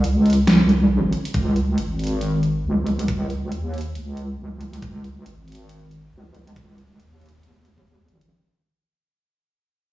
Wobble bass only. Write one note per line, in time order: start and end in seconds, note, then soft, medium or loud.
0.04 0.46 C#2 medium
0.48 1.11 C2 medium
1.34 1.76 C#2 medium
1.78 2.63 G#1 loud
2.65 3.07 C#2 medium
3.08 3.50 C#2 loud
3.52 3.94 D#2 medium
3.95 4.37 C#2 loud
4.39 4.81 C#2 loud
4.83 5.24 C#2 loud
5.26 6.11 G#1 medium
6.13 6.55 C#2 medium
6.56 6.98 C#2 loud
7.00 7.42 D#2 medium
7.43 8.07 D#2 medium
8.09 8.29 G#1 medium